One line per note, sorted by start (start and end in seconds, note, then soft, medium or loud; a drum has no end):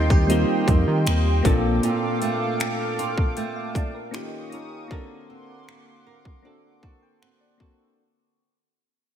0.00 0.45 D#2 medium
0.00 1.53 D#3 medium
0.00 0.27 G3 medium
0.00 0.28 C4 medium
0.00 0.67 C4 soft
0.00 0.29 D#4 medium
0.00 0.10 F4 medium
0.00 0.30 F4 medium
0.00 1.41 G4 medium
0.00 1.46 A#4 medium
0.00 1.42 D#5 medium
0.00 4.10 G5 medium
0.00 1.42 C6 medium
0.10 1.53 G4 medium
0.10 kick medium
0.27 1.21 G3 medium
0.27 1.06 A#3 medium
0.27 1.22 C4 medium
0.27 1.22 D#4 medium
0.27 1.23 F4 medium
0.27 closed hi-hat medium
0.32 1.23 G4 medium
0.68 0.85 F2 medium
0.68 1.53 C4 medium
0.68 kick medium
0.68 closed hi-hat medium
0.88 1.08 D#3 loud
1.07 1.42 D#2 loud
1.07 2.22 A#3 medium
1.07 finger snap loud
1.07 closed hi-hat medium
1.43 1.80 A#1 medium
1.43 1.83 A#2 medium
1.43 2.67 A#3 medium
1.43 2.68 C4 medium
1.43 2.69 D4 medium
1.43 2.69 F4 medium
1.43 4.12 A4 medium
1.43 4.88 F5 medium
1.43 4.11 D6 medium
1.43 kick loud
1.43 closed hi-hat medium
1.47 2.70 A4 loud
1.83 4.22 A#2 medium
1.83 2.98 F4 medium
1.83 closed hi-hat medium
2.22 3.36 A3 medium
2.22 closed hi-hat medium
2.60 3.75 D4 medium
2.60 finger snap loud
2.60 closed hi-hat medium
2.99 4.22 F4 medium
2.99 closed hi-hat soft
3.18 kick medium
3.37 4.22 A3 medium
3.37 3.55 G5 medium
3.37 closed hi-hat medium
3.56 3.75 F5 medium
3.75 4.22 D4 medium
3.75 3.94 D5 medium
3.75 kick medium
3.75 closed hi-hat medium
3.94 4.31 A#4 medium
4.11 4.91 D#3 medium
4.11 4.44 A#3 medium
4.11 4.44 C#4 medium
4.11 4.45 D#4 medium
4.11 4.45 F4 medium
4.11 4.90 G4 medium
4.11 4.90 C#6 medium
4.11 4.90 D#6 medium
4.11 finger snap loud
4.11 closed hi-hat medium
4.15 4.46 G4 loud
4.50 4.82 A#3 medium
4.50 4.83 C#4 medium
4.50 4.99 C#4 medium
4.50 4.83 D#4 medium
4.50 4.84 F4 medium
4.50 closed hi-hat medium
4.54 4.84 A#4 medium
4.88 8.41 D3 medium
4.88 6.13 A#3 medium
4.88 7.96 A#3 medium
4.88 6.14 C4 medium
4.88 6.14 D4 medium
4.88 6.15 F#4 medium
4.88 6.06 A#4 medium
4.88 7.96 F#5 medium
4.88 7.96 C6 medium
4.88 7.96 D6 medium
4.88 kick loud
4.92 6.15 A4 medium
5.30 6.45 C4 medium
5.68 6.83 F#4 medium
5.68 finger snap loud
6.07 8.57 A#4 medium
6.25 kick medium
6.43 7.36 A#3 medium
6.43 7.37 C4 medium
6.43 7.22 C4 medium
6.43 7.38 D4 medium
6.43 7.38 F#4 medium
6.47 7.39 A4 medium
6.83 7.60 F#4 medium
6.83 7.01 A5 medium
6.83 kick medium
7.02 7.20 G5 medium
7.22 8.57 C4 medium
7.22 7.40 F#5 medium
7.22 finger snap loud
7.41 7.95 D5 medium
7.58 7.90 A#3 medium
7.58 7.90 C4 medium
7.58 7.91 D4 medium
7.58 8.57 F#4 medium
7.58 7.92 F#4 medium
7.58 kick medium
7.62 7.92 A4 medium